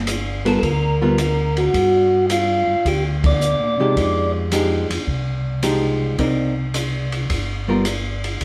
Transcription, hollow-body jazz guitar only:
0.45 G3 B3 F4 A#4
1.02 G3 B3 F4 A#4
3.80 F3 G#3 D#4 G4
4.52 F3 G#3 D#4 G4
5.63 F3 G#3 D#4 G4
6.19 C4 D#4 A#4 D5
7.68 G3 B3 F4 A#4

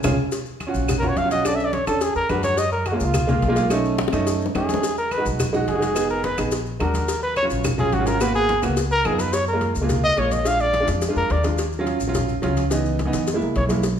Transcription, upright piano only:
0.04 C#4 F4 G#4
0.67 C#4 F4 F#4
1.02 C#4 F4 F#4
1.24 C#4 F4 F#4
1.31 C#4 F4 F#4
1.45 C#4 D4 A4
1.87 C#4 D4 A4
2.29 G#3 D4 F#4
2.92 G#3 A#3 F4
3.27 G#3 A#3 F4
3.48 G#3 A#3 F4
3.56 G#3 A#3 F4
3.70 A3 C#4 D#4
4.12 A3 C#4 D#4
4.55 A3 C#4 D#4
5.17 G#3 D#4 F#4
5.53 G#3 D#4 F#4
5.74 G#3 D#4 F#4
5.80 G#3 D#4 F#4
5.94 B3 D#4 G#4
6.37 B3 D#4 G#4
6.80 G#3 D4 F#4
7.43 F#3 C#4 F4
7.78 F#3 C#4 F4
7.99 F#3 C#4 F4
8.06 F#3 C#4 F4
8.20 A#3 B3 F#4
8.62 A#3 B3 F#4
9.04 B3 D#4 F4
9.53 G#3 A#3 F4
9.81 G#3 A#3 F4
10.16 G#3 A#3 F4
10.45 G#3 D4 F4
10.80 G#3 D4 F4
11.09 G#3 D4 F4
11.44 G#3 D4 F4
11.79 F#3 C#4 F4
12.07 F#3 C#4 F4
12.42 F#3 C#4 F4
12.70 E3 B3 D#4
13.05 E3 B3 D#4
13.34 G#3 A#3 E4
13.69 G#3 A#3 E4

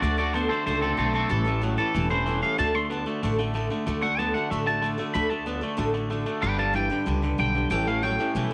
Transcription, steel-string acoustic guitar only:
0.03 D3 A3 D4 F#4 A4
0.17 D4 F#4 A4
0.34 A3 D4 F#4 A4
0.51 A4
0.67 D3 A3 D4 F#4 A4
0.82 D4 F#4 A4
0.97 A3 D4 F#4 A4
1.13 D4 F#4 A4
1.29 A2 E3 G3 C#4 G4 A4
1.44 G3 C#4 G4 A4
1.61 G3 C#4 G4 A4
1.77 G3 C#4 G4 A4
1.94 A2 E3 G3 C#4 G4 A4
2.10 G3 C#4 G4 A4
2.26 G3 C#4 G4 A4
2.42 G3 C#4 G4 A4
2.58 D3 A3 D4 F#4 A4
2.75 D4 A4
2.91 A3 D4 F#4 A4
3.06 D4 F#4 A4
3.23 D3 A3 D4 F#4 A4
3.39 D4 F#4 A4
3.54 A3 D4 F#4 A4
3.70 D4 F#4 A4
3.87 D3 A3 D4 F#4 A4
4.02 D4 F#4 A4
4.19 A3 D4 F#4 A4
4.35 D4 F#4 A4
4.51 D3 A3 D4 F#4 A4
4.67 D4 F#4 A4
4.83 A3 D4 F#4 A4
4.98 D4 F#4 A4
5.14 D3 A3 D4 F#4 A4
5.30 D4 F#4 A4
5.46 A3 D4 F#4 A4
5.61 D4 F#4 A4
5.77 D3 A3 D4 F#4 A4
5.94 D4 F#4 A4
6.10 A3 D4 F#4 A4
6.26 D4 F#4 A4
6.42 G3 D4 G4 B4
6.58 D4 G4 B4
6.74 G3 D4 G4 B4
6.90 D4 G4 B4
7.06 G3 D4 G4 B4
7.22 D4 G4 B4
7.38 G3 D4 G4 B4
7.55 D4 G4 B4
7.70 A2 E3 G3 C#4 G4 A4
7.87 C#4 G4 A4
8.03 G3 C#4 G4 A4
8.19 G3 C#4 G4 A4
8.35 A2 E3 G3 C#4 G4 A4

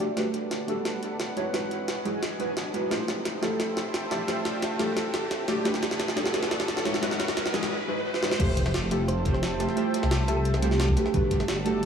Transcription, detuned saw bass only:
0.17 G1
1.11 G1
1.80 E1
2.57 B1
2.91 F1
3.85 F1
4.54 C2
5.65 G1
6.59 G1
7.28 E1
8.40 F1
9.34 F1
10.03 C2
11.14 G1

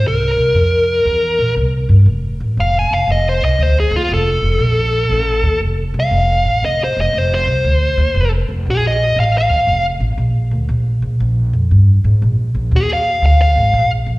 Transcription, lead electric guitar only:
0.08 A#4
2.60 F5
2.79 G#5
2.94 F5
3.12 D#5
3.29 C5
3.45 D#5
3.63 C5
3.80 G#4
3.96 F4
4.14 A4
6.00 F5
6.65 D#5
6.84 C5
7.01 D#5
7.18 C5
7.34 C5
8.70 G#4
8.87 D#5
9.20 F5
9.38 F5
12.76 G#4
12.93 F5
13.26 F5
13.42 F5

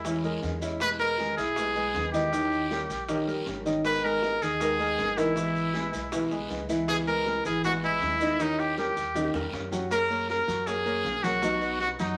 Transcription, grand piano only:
0.05 E3 E4 E5
0.24 G#3 G#4 A#4
0.62 E4 E5
1.00 G#3 G#4 B4
1.19 G#3 G#4 B4
1.38 E4 E5
1.76 G#3 G#4 B4
2.14 D#3 D#4 D#5
2.33 D#3 D#4 D#5
2.71 G3 G4 A#4
3.08 D#3 D#4 D#5
3.27 G3 G4 A#4
3.66 D#3 D#4 D#5
4.04 G#3 G#4 A#4
4.23 G#3 G#4 A#4
4.42 D#3 D#4 D#5
4.80 G#3 G#4 A#4
5.18 E3 E4 E5
5.36 E3 E4 E5
5.75 G#3 G#4 B4
6.13 E3 E4 E5
6.31 G#3 G#4 B4
6.69 E3 E4 E5
7.07 G#3 G#4 B4
7.26 G#3 G#4 B4
7.45 E3 E4 E5
7.83 G#3 G#4 B4
8.22 D#3 D#4 D#5
8.40 D#3 D#4 D#5
8.78 G3 G4 A#4
9.16 D#3 D#4 D#5
9.35 G3 G4 A#4
9.72 F#3 F#4 F#5
10.10 A#3 A#4 C#5
10.48 F#3 F#4 F#5
10.85 A#3 A#4 C#5
11.24 F#3 F#4 F#5
11.42 F#3 F#4
11.62 B3 B4 D#5
12.00 F#3 F#4 F#5

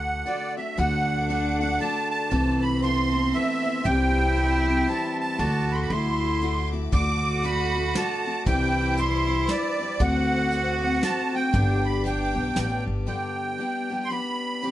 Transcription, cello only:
0.78 D4
2.32 C4
3.85 E4
5.39 F#4
5.91 E4
6.93 F#4
8.46 E4
10.00 F#4
11.53 D4

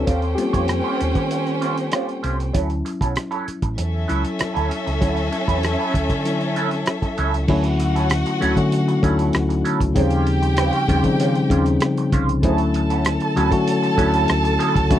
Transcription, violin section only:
0.07 C#4 C5 G5
3.78 C#4 A4 E5
7.49 F#4 F#5
9.96 G4 G5
12.44 A4 A5

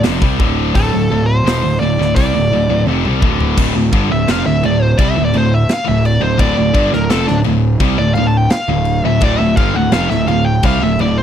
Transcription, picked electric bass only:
0.06 F1
0.22 C2
0.39 D1
0.76 D1
0.94 D1
1.11 D1
1.46 E1
1.64 D1
1.81 D1
1.99 D1
2.17 C2
2.35 D1
2.51 D1
2.69 D1
2.87 F1
3.05 C2
3.22 D1
3.58 D1
3.76 D1
3.93 G1
4.12 D1
4.29 F1
4.46 D1
4.64 D1
4.99 C2
5.17 D1
5.34 D1
5.89 D1
6.22 D1
6.40 D1
6.58 D1
6.75 G1
6.94 D1
7.13 F1
7.30 D1
7.47 D1
7.81 C2
7.99 D1
8.16 D1
8.69 D1
9.05 D1
9.22 D1
9.40 D1
9.57 G1
9.75 D1
9.92 F1
10.10 D1
10.27 D1
10.64 C2
10.81 D1
10.99 D1

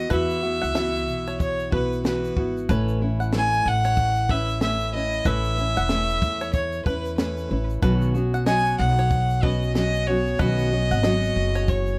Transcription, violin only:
Already playing: D#5
0.13 E5
1.42 C#5
1.74 B4
2.07 B4
3.37 G#5
3.68 F#5
4.31 E5
4.62 E5
4.95 D#5
5.27 E5
6.54 C#5
6.86 B4
7.18 B4
8.47 G#5
8.78 F#5
9.43 D#5
9.76 D#5
10.07 C#5
10.40 D#5
11.69 C#5

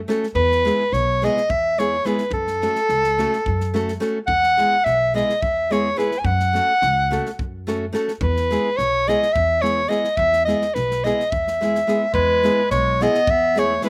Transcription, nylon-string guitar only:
0.08 A3 C#4 F#4 A4
0.65 G#3 B3 E4 G#4
1.22 G#3 B3 E4 G#4
1.78 G#3 B3 E4 G#4
2.05 G#3 B3 E4 G#4
2.62 A3 C#4 F#4 A4
3.18 A3 C#4 F#4 A4
3.74 A3 C#4 F#4 A4
4.00 A3 C#4 F#4 A4
4.57 G#3 B3 E4 G#4
5.14 G#3 B3 E4 G#4
5.70 G#3 B3 E4 G#4
5.96 G#3 B3 E4 G#4
6.53 A3 C#4 F#4 A4
7.11 A3 C#4 F#4 A4
7.67 A3 C#4 F#4 A4
7.93 A3 C#4 F#4 A4
8.50 G#3 B3 E4 G#4
9.08 G#3 B3 E4 G#4
9.62 G#3 B3 E4 G#4
9.88 G#3 B3 E4 G#4
10.47 G#3 B3 E4 G#4
11.04 G#3 B3 E4 G#4
11.61 G#3 B3 E4 G#4
11.87 G#3 B3 E4 G#4
12.43 G#3 B3 E4 G#4
13.01 G#3 B3 E4 G#4
13.55 G#3 B3 E4 G#4
13.82 G#3 B3 E4 G#4

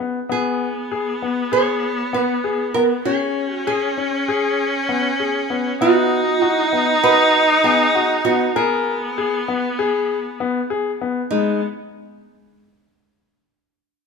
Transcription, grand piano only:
0.00 B3
0.29 B3
0.91 G#4
1.22 B3
1.52 G#4
2.13 B3
2.44 G#4
2.76 B3
3.06 C#4
3.67 G#4
3.98 C#4
4.28 G#4
4.89 B3
5.20 G#4
5.50 B3
5.81 B3
6.42 F#4
6.73 B3
7.03 F#4
7.65 B3
7.95 F#4
8.26 B3
8.56 A#4
9.18 G#4
9.48 B3
9.79 G#4
10.40 B3
10.70 G#4
11.02 B3
11.32 G#3

